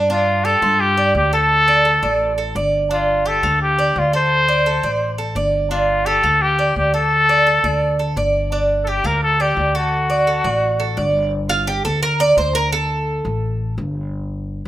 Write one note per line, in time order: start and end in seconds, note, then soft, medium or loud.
0.00 0.56 G2 loud
0.10 0.44 D4 medium
0.10 0.46 F4 loud
0.45 0.62 G4 medium
0.45 0.82 A4 loud
0.62 1.11 G2 loud
0.62 0.96 F4 medium
0.81 1.15 G4 loud
0.97 1.31 D5 medium
1.15 1.97 D2 loud
1.15 1.32 G4 medium
1.33 1.67 A4 medium
1.33 2.34 A4 loud
1.68 1.85 D5 medium
1.85 2.02 A4 medium
2.02 2.51 A1 loud
2.02 2.37 D5 medium
2.38 2.55 A4 medium
2.55 3.37 G1 loud
2.55 2.90 D5 medium
2.91 3.25 D4 medium
2.91 3.29 F4 medium
3.26 3.43 G4 medium
3.26 3.61 A4 loud
3.43 3.92 D2 loud
3.43 3.77 F4 medium
3.63 4.00 G4 loud
3.79 4.12 D5 medium
3.96 4.78 D2 loud
3.96 4.15 F4 medium
4.13 4.47 A4 medium
4.13 5.16 C5 loud
4.48 4.65 D5 medium
4.66 4.83 A4 medium
4.83 5.32 A1 medium
4.83 5.17 D5 medium
5.18 5.35 A4 medium
5.35 6.18 G1 loud
5.35 5.70 D5 medium
5.71 6.05 D4 medium
5.71 6.08 F4 loud
6.06 6.23 G4 medium
6.06 6.43 A4 loud
6.23 6.72 D2 loud
6.23 6.58 F4 medium
6.42 6.76 G4 loud
6.59 6.93 D5 medium
6.76 7.58 D2 medium
6.76 6.93 G4 loud
6.94 7.28 A4 medium
6.94 7.96 A4 loud
7.29 7.46 D5 medium
7.47 7.64 A4 medium
7.64 8.13 D2 loud
7.64 7.98 D5 medium
7.99 8.16 A4 medium
8.16 8.98 G1 loud
8.16 8.51 D5 medium
8.52 8.86 D4 medium
8.84 9.04 G4 medium
8.84 8.90 A4 medium
8.89 9.08 G4 loud
9.04 9.53 D2 loud
9.04 9.38 F4 medium
9.04 9.23 A#4 loud
9.23 9.43 A4 loud
9.40 9.77 G4 loud
9.40 9.74 D5 medium
9.57 10.39 D2 loud
9.75 11.15 F#4 loud
9.75 10.09 A4 medium
10.10 10.27 D5 medium
10.27 10.44 A4 medium
10.44 10.93 A1 loud
10.44 10.79 D5 medium
10.80 10.97 A4 medium
10.97 11.79 G1 loud
10.97 11.31 D5 medium
11.50 11.67 F4 medium
11.67 11.84 G4 medium
11.85 12.34 D2 medium
11.85 12.02 A4 medium
12.03 12.20 A#4 medium
12.20 12.37 D5 loud
12.37 13.19 D2 loud
12.37 12.55 C5 medium
12.55 12.72 A#4 medium
12.73 13.74 A4 medium
13.25 13.74 A1 loud
13.78 14.60 G1 loud